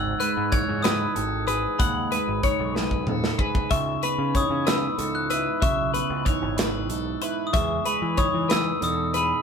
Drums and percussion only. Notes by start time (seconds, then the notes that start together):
0.20 closed hi-hat
0.52 kick, closed hi-hat
0.84 snare, closed hi-hat
1.16 closed hi-hat
1.48 closed hi-hat
1.80 kick, closed hi-hat
2.12 closed hi-hat
2.43 kick, closed hi-hat
2.76 snare
2.91 kick
3.07 mid tom
3.24 snare
3.39 kick
3.55 kick
3.71 kick, closed hi-hat
4.03 closed hi-hat
4.35 kick, closed hi-hat
4.67 snare, closed hi-hat
4.99 closed hi-hat
5.30 closed hi-hat
5.62 kick, closed hi-hat
5.94 closed hi-hat
6.26 kick, closed hi-hat
6.58 snare, closed hi-hat
6.90 closed hi-hat
7.22 closed hi-hat
7.54 kick, closed hi-hat
7.86 closed hi-hat
8.17 kick, closed hi-hat
8.50 snare, closed hi-hat
8.82 closed hi-hat
9.14 closed hi-hat